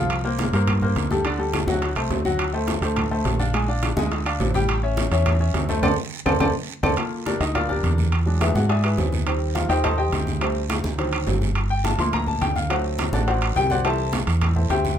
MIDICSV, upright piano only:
0, 0, Header, 1, 2, 480
1, 0, Start_track
1, 0, Key_signature, -2, "minor"
1, 0, Tempo, 286260
1, 173, Time_signature, 4, 2, 24, 8
1, 25128, End_track
2, 0, Start_track
2, 0, Title_t, "Upright piano"
2, 0, Program_c, 0, 0
2, 0, Note_on_c, 0, 53, 83
2, 0, Note_on_c, 0, 65, 85
2, 0, Note_on_c, 0, 77, 93
2, 324, Note_off_c, 0, 53, 0
2, 325, Note_off_c, 0, 65, 0
2, 328, Note_off_c, 0, 77, 0
2, 411, Note_on_c, 0, 58, 75
2, 415, Note_on_c, 0, 70, 67
2, 421, Note_on_c, 0, 72, 67
2, 806, Note_off_c, 0, 58, 0
2, 808, Note_off_c, 0, 70, 0
2, 811, Note_off_c, 0, 72, 0
2, 900, Note_on_c, 0, 58, 64
2, 903, Note_on_c, 0, 70, 75
2, 908, Note_on_c, 0, 72, 66
2, 1291, Note_off_c, 0, 58, 0
2, 1293, Note_off_c, 0, 70, 0
2, 1296, Note_off_c, 0, 72, 0
2, 1380, Note_on_c, 0, 58, 72
2, 1385, Note_on_c, 0, 72, 69
2, 1386, Note_on_c, 0, 70, 59
2, 1771, Note_off_c, 0, 58, 0
2, 1774, Note_off_c, 0, 72, 0
2, 1775, Note_off_c, 0, 70, 0
2, 1861, Note_on_c, 0, 55, 66
2, 1864, Note_on_c, 0, 67, 70
2, 1868, Note_on_c, 0, 69, 76
2, 2055, Note_off_c, 0, 55, 0
2, 2057, Note_off_c, 0, 67, 0
2, 2059, Note_off_c, 0, 69, 0
2, 2095, Note_on_c, 0, 50, 75
2, 2104, Note_on_c, 0, 62, 74
2, 2107, Note_on_c, 0, 74, 79
2, 2292, Note_off_c, 0, 50, 0
2, 2297, Note_off_c, 0, 62, 0
2, 2298, Note_off_c, 0, 74, 0
2, 2324, Note_on_c, 0, 55, 70
2, 2330, Note_on_c, 0, 67, 65
2, 2336, Note_on_c, 0, 69, 75
2, 2722, Note_off_c, 0, 55, 0
2, 2726, Note_off_c, 0, 67, 0
2, 2729, Note_off_c, 0, 69, 0
2, 2806, Note_on_c, 0, 54, 80
2, 2810, Note_on_c, 0, 66, 83
2, 2815, Note_on_c, 0, 78, 80
2, 3204, Note_off_c, 0, 54, 0
2, 3206, Note_off_c, 0, 66, 0
2, 3209, Note_off_c, 0, 78, 0
2, 3292, Note_on_c, 0, 57, 69
2, 3302, Note_on_c, 0, 69, 69
2, 3304, Note_on_c, 0, 72, 64
2, 3688, Note_off_c, 0, 57, 0
2, 3693, Note_off_c, 0, 69, 0
2, 3694, Note_off_c, 0, 72, 0
2, 3774, Note_on_c, 0, 54, 80
2, 3777, Note_on_c, 0, 66, 87
2, 3780, Note_on_c, 0, 78, 86
2, 4169, Note_off_c, 0, 54, 0
2, 4171, Note_off_c, 0, 66, 0
2, 4172, Note_off_c, 0, 78, 0
2, 4252, Note_on_c, 0, 57, 71
2, 4261, Note_on_c, 0, 69, 71
2, 4265, Note_on_c, 0, 72, 70
2, 4648, Note_off_c, 0, 57, 0
2, 4653, Note_off_c, 0, 69, 0
2, 4656, Note_off_c, 0, 72, 0
2, 4735, Note_on_c, 0, 57, 67
2, 4738, Note_on_c, 0, 69, 68
2, 4743, Note_on_c, 0, 72, 72
2, 5130, Note_off_c, 0, 57, 0
2, 5132, Note_off_c, 0, 69, 0
2, 5135, Note_off_c, 0, 72, 0
2, 5220, Note_on_c, 0, 57, 68
2, 5222, Note_on_c, 0, 69, 75
2, 5224, Note_on_c, 0, 72, 65
2, 5613, Note_off_c, 0, 57, 0
2, 5614, Note_off_c, 0, 69, 0
2, 5615, Note_off_c, 0, 72, 0
2, 5693, Note_on_c, 0, 62, 75
2, 5693, Note_on_c, 0, 74, 77
2, 5698, Note_on_c, 0, 77, 75
2, 5892, Note_off_c, 0, 62, 0
2, 5892, Note_off_c, 0, 74, 0
2, 5895, Note_off_c, 0, 77, 0
2, 5933, Note_on_c, 0, 56, 79
2, 5942, Note_on_c, 0, 68, 68
2, 5945, Note_on_c, 0, 80, 77
2, 6132, Note_off_c, 0, 56, 0
2, 6137, Note_off_c, 0, 68, 0
2, 6139, Note_off_c, 0, 80, 0
2, 6171, Note_on_c, 0, 62, 69
2, 6182, Note_on_c, 0, 74, 69
2, 6183, Note_on_c, 0, 77, 70
2, 6568, Note_off_c, 0, 62, 0
2, 6574, Note_off_c, 0, 74, 0
2, 6575, Note_off_c, 0, 77, 0
2, 6654, Note_on_c, 0, 56, 82
2, 6662, Note_on_c, 0, 68, 79
2, 6671, Note_on_c, 0, 80, 78
2, 7050, Note_off_c, 0, 56, 0
2, 7054, Note_off_c, 0, 68, 0
2, 7060, Note_off_c, 0, 80, 0
2, 7137, Note_on_c, 0, 62, 65
2, 7144, Note_on_c, 0, 74, 68
2, 7146, Note_on_c, 0, 77, 68
2, 7532, Note_off_c, 0, 62, 0
2, 7536, Note_off_c, 0, 74, 0
2, 7537, Note_off_c, 0, 77, 0
2, 7621, Note_on_c, 0, 55, 86
2, 7626, Note_on_c, 0, 67, 97
2, 7631, Note_on_c, 0, 79, 88
2, 8014, Note_off_c, 0, 55, 0
2, 8017, Note_off_c, 0, 67, 0
2, 8020, Note_off_c, 0, 79, 0
2, 8102, Note_on_c, 0, 61, 77
2, 8103, Note_on_c, 0, 73, 72
2, 8111, Note_on_c, 0, 76, 72
2, 8495, Note_off_c, 0, 61, 0
2, 8496, Note_off_c, 0, 73, 0
2, 8500, Note_off_c, 0, 76, 0
2, 8585, Note_on_c, 0, 61, 68
2, 8590, Note_on_c, 0, 73, 73
2, 8599, Note_on_c, 0, 76, 76
2, 8977, Note_off_c, 0, 61, 0
2, 8980, Note_off_c, 0, 73, 0
2, 8985, Note_off_c, 0, 76, 0
2, 9058, Note_on_c, 0, 61, 68
2, 9064, Note_on_c, 0, 73, 71
2, 9068, Note_on_c, 0, 76, 63
2, 9452, Note_off_c, 0, 61, 0
2, 9456, Note_off_c, 0, 73, 0
2, 9458, Note_off_c, 0, 76, 0
2, 9543, Note_on_c, 0, 57, 81
2, 9549, Note_on_c, 0, 69, 80
2, 9552, Note_on_c, 0, 72, 69
2, 9739, Note_off_c, 0, 57, 0
2, 9742, Note_off_c, 0, 69, 0
2, 9744, Note_off_c, 0, 72, 0
2, 9776, Note_on_c, 0, 72, 97
2, 9777, Note_on_c, 0, 74, 106
2, 9778, Note_on_c, 0, 69, 98
2, 9932, Note_off_c, 0, 72, 0
2, 9932, Note_off_c, 0, 74, 0
2, 9933, Note_off_c, 0, 69, 0
2, 10492, Note_on_c, 0, 72, 95
2, 10494, Note_on_c, 0, 74, 83
2, 10496, Note_on_c, 0, 69, 92
2, 10649, Note_off_c, 0, 72, 0
2, 10650, Note_off_c, 0, 74, 0
2, 10652, Note_off_c, 0, 69, 0
2, 10734, Note_on_c, 0, 72, 99
2, 10736, Note_on_c, 0, 69, 96
2, 10738, Note_on_c, 0, 74, 97
2, 10890, Note_off_c, 0, 72, 0
2, 10891, Note_off_c, 0, 69, 0
2, 10893, Note_off_c, 0, 74, 0
2, 11453, Note_on_c, 0, 72, 87
2, 11455, Note_on_c, 0, 69, 94
2, 11456, Note_on_c, 0, 74, 92
2, 11610, Note_off_c, 0, 72, 0
2, 11611, Note_off_c, 0, 69, 0
2, 11611, Note_off_c, 0, 74, 0
2, 11692, Note_on_c, 0, 69, 54
2, 11704, Note_on_c, 0, 58, 44
2, 11713, Note_on_c, 0, 65, 53
2, 12182, Note_on_c, 0, 62, 50
2, 12182, Note_on_c, 0, 74, 66
2, 12184, Note_on_c, 0, 67, 48
2, 12185, Note_on_c, 0, 70, 60
2, 12414, Note_off_c, 0, 74, 0
2, 12415, Note_off_c, 0, 62, 0
2, 12415, Note_off_c, 0, 67, 0
2, 12416, Note_off_c, 0, 70, 0
2, 12421, Note_on_c, 0, 75, 73
2, 12424, Note_on_c, 0, 63, 57
2, 12639, Note_off_c, 0, 65, 0
2, 12654, Note_off_c, 0, 75, 0
2, 12655, Note_off_c, 0, 63, 0
2, 12657, Note_on_c, 0, 77, 76
2, 12663, Note_on_c, 0, 74, 71
2, 12665, Note_on_c, 0, 65, 63
2, 12667, Note_on_c, 0, 70, 60
2, 12864, Note_off_c, 0, 74, 0
2, 12870, Note_off_c, 0, 70, 0
2, 12889, Note_on_c, 0, 74, 72
2, 12892, Note_off_c, 0, 77, 0
2, 12896, Note_off_c, 0, 65, 0
2, 12896, Note_on_c, 0, 70, 63
2, 12897, Note_on_c, 0, 62, 57
2, 12897, Note_on_c, 0, 67, 60
2, 13550, Note_off_c, 0, 69, 0
2, 13556, Note_off_c, 0, 58, 0
2, 13565, Note_off_c, 0, 74, 0
2, 13568, Note_off_c, 0, 70, 0
2, 13569, Note_off_c, 0, 62, 0
2, 13569, Note_off_c, 0, 67, 0
2, 13849, Note_on_c, 0, 54, 45
2, 13859, Note_on_c, 0, 56, 49
2, 13870, Note_on_c, 0, 62, 58
2, 14100, Note_on_c, 0, 76, 75
2, 14104, Note_on_c, 0, 68, 54
2, 14107, Note_on_c, 0, 71, 51
2, 14108, Note_on_c, 0, 64, 56
2, 14334, Note_off_c, 0, 76, 0
2, 14336, Note_off_c, 0, 68, 0
2, 14337, Note_off_c, 0, 71, 0
2, 14338, Note_off_c, 0, 64, 0
2, 14345, Note_on_c, 0, 78, 74
2, 14351, Note_on_c, 0, 66, 60
2, 14540, Note_off_c, 0, 54, 0
2, 14545, Note_off_c, 0, 56, 0
2, 14550, Note_off_c, 0, 62, 0
2, 14575, Note_on_c, 0, 80, 89
2, 14576, Note_off_c, 0, 78, 0
2, 14580, Note_off_c, 0, 66, 0
2, 14582, Note_on_c, 0, 68, 73
2, 14582, Note_on_c, 0, 76, 71
2, 14584, Note_on_c, 0, 74, 63
2, 14789, Note_off_c, 0, 76, 0
2, 14795, Note_off_c, 0, 68, 0
2, 14811, Note_off_c, 0, 80, 0
2, 14814, Note_on_c, 0, 76, 81
2, 14816, Note_off_c, 0, 74, 0
2, 14820, Note_on_c, 0, 68, 54
2, 14821, Note_on_c, 0, 64, 60
2, 14824, Note_on_c, 0, 71, 56
2, 15488, Note_off_c, 0, 76, 0
2, 15491, Note_off_c, 0, 64, 0
2, 15491, Note_off_c, 0, 68, 0
2, 15493, Note_off_c, 0, 71, 0
2, 15525, Note_on_c, 0, 51, 54
2, 15537, Note_on_c, 0, 55, 46
2, 15548, Note_on_c, 0, 60, 59
2, 16011, Note_on_c, 0, 77, 73
2, 16019, Note_on_c, 0, 65, 62
2, 16217, Note_off_c, 0, 51, 0
2, 16227, Note_off_c, 0, 55, 0
2, 16236, Note_off_c, 0, 60, 0
2, 16242, Note_on_c, 0, 51, 46
2, 16250, Note_off_c, 0, 77, 0
2, 16250, Note_on_c, 0, 79, 90
2, 16252, Note_on_c, 0, 55, 45
2, 16253, Note_off_c, 0, 65, 0
2, 16257, Note_on_c, 0, 67, 62
2, 16259, Note_on_c, 0, 75, 70
2, 16260, Note_on_c, 0, 72, 70
2, 16261, Note_on_c, 0, 60, 48
2, 16467, Note_off_c, 0, 51, 0
2, 16473, Note_off_c, 0, 55, 0
2, 16475, Note_off_c, 0, 72, 0
2, 16478, Note_off_c, 0, 60, 0
2, 16480, Note_off_c, 0, 75, 0
2, 16489, Note_off_c, 0, 79, 0
2, 16492, Note_off_c, 0, 67, 0
2, 16499, Note_on_c, 0, 81, 89
2, 16500, Note_on_c, 0, 72, 76
2, 16505, Note_on_c, 0, 75, 68
2, 16506, Note_on_c, 0, 69, 70
2, 16714, Note_off_c, 0, 75, 0
2, 16716, Note_off_c, 0, 72, 0
2, 16730, Note_on_c, 0, 79, 74
2, 16733, Note_off_c, 0, 81, 0
2, 16737, Note_off_c, 0, 69, 0
2, 16739, Note_on_c, 0, 75, 53
2, 16741, Note_on_c, 0, 72, 63
2, 16742, Note_on_c, 0, 67, 65
2, 17405, Note_off_c, 0, 79, 0
2, 17410, Note_off_c, 0, 75, 0
2, 17411, Note_off_c, 0, 72, 0
2, 17412, Note_off_c, 0, 67, 0
2, 17450, Note_on_c, 0, 55, 50
2, 17459, Note_on_c, 0, 57, 46
2, 17472, Note_on_c, 0, 60, 62
2, 17775, Note_off_c, 0, 55, 0
2, 17780, Note_off_c, 0, 57, 0
2, 17787, Note_off_c, 0, 60, 0
2, 18409, Note_on_c, 0, 51, 51
2, 18415, Note_on_c, 0, 54, 47
2, 18431, Note_on_c, 0, 60, 56
2, 19099, Note_off_c, 0, 51, 0
2, 19102, Note_off_c, 0, 54, 0
2, 19111, Note_off_c, 0, 60, 0
2, 19624, Note_on_c, 0, 79, 90
2, 19856, Note_off_c, 0, 79, 0
2, 19877, Note_on_c, 0, 81, 82
2, 20102, Note_off_c, 0, 81, 0
2, 20104, Note_on_c, 0, 53, 55
2, 20111, Note_on_c, 0, 57, 48
2, 20113, Note_on_c, 0, 84, 103
2, 20125, Note_on_c, 0, 58, 63
2, 20340, Note_off_c, 0, 84, 0
2, 20354, Note_on_c, 0, 82, 85
2, 20580, Note_off_c, 0, 82, 0
2, 20582, Note_on_c, 0, 81, 85
2, 20786, Note_off_c, 0, 53, 0
2, 20790, Note_off_c, 0, 57, 0
2, 20798, Note_off_c, 0, 58, 0
2, 20814, Note_off_c, 0, 81, 0
2, 20815, Note_on_c, 0, 79, 86
2, 21050, Note_off_c, 0, 79, 0
2, 21060, Note_on_c, 0, 77, 87
2, 21290, Note_on_c, 0, 54, 57
2, 21293, Note_off_c, 0, 77, 0
2, 21298, Note_on_c, 0, 57, 52
2, 21303, Note_on_c, 0, 78, 85
2, 21309, Note_on_c, 0, 60, 59
2, 21446, Note_off_c, 0, 78, 0
2, 22026, Note_on_c, 0, 74, 78
2, 22029, Note_on_c, 0, 62, 61
2, 22030, Note_on_c, 0, 66, 62
2, 22033, Note_on_c, 0, 69, 56
2, 22242, Note_off_c, 0, 66, 0
2, 22245, Note_off_c, 0, 74, 0
2, 22257, Note_off_c, 0, 62, 0
2, 22257, Note_on_c, 0, 78, 72
2, 22259, Note_off_c, 0, 69, 0
2, 22266, Note_on_c, 0, 72, 71
2, 22267, Note_on_c, 0, 66, 58
2, 22270, Note_on_c, 0, 74, 63
2, 22704, Note_off_c, 0, 78, 0
2, 22709, Note_off_c, 0, 66, 0
2, 22709, Note_off_c, 0, 72, 0
2, 22711, Note_off_c, 0, 74, 0
2, 22742, Note_on_c, 0, 79, 104
2, 22749, Note_on_c, 0, 67, 77
2, 22973, Note_off_c, 0, 79, 0
2, 22977, Note_off_c, 0, 67, 0
2, 22986, Note_on_c, 0, 78, 94
2, 22992, Note_on_c, 0, 72, 72
2, 22993, Note_on_c, 0, 74, 73
2, 22995, Note_on_c, 0, 66, 72
2, 23146, Note_off_c, 0, 54, 0
2, 23150, Note_off_c, 0, 57, 0
2, 23155, Note_off_c, 0, 60, 0
2, 23207, Note_off_c, 0, 72, 0
2, 23215, Note_off_c, 0, 78, 0
2, 23218, Note_off_c, 0, 74, 0
2, 23218, Note_on_c, 0, 52, 59
2, 23219, Note_off_c, 0, 66, 0
2, 23224, Note_on_c, 0, 55, 49
2, 23226, Note_on_c, 0, 81, 102
2, 23232, Note_on_c, 0, 72, 75
2, 23236, Note_on_c, 0, 76, 79
2, 23237, Note_on_c, 0, 69, 76
2, 23241, Note_on_c, 0, 60, 55
2, 23537, Note_off_c, 0, 52, 0
2, 23540, Note_off_c, 0, 55, 0
2, 23549, Note_off_c, 0, 60, 0
2, 23668, Note_off_c, 0, 81, 0
2, 23671, Note_off_c, 0, 72, 0
2, 23674, Note_off_c, 0, 69, 0
2, 23674, Note_off_c, 0, 76, 0
2, 24412, Note_on_c, 0, 76, 60
2, 24416, Note_on_c, 0, 69, 48
2, 24419, Note_on_c, 0, 64, 59
2, 24419, Note_on_c, 0, 72, 51
2, 24630, Note_off_c, 0, 76, 0
2, 24632, Note_off_c, 0, 72, 0
2, 24649, Note_off_c, 0, 69, 0
2, 24650, Note_off_c, 0, 64, 0
2, 24655, Note_on_c, 0, 79, 83
2, 24656, Note_on_c, 0, 76, 73
2, 24657, Note_on_c, 0, 72, 66
2, 24658, Note_on_c, 0, 67, 67
2, 25101, Note_off_c, 0, 72, 0
2, 25101, Note_off_c, 0, 76, 0
2, 25101, Note_off_c, 0, 79, 0
2, 25102, Note_off_c, 0, 67, 0
2, 25128, End_track
0, 0, End_of_file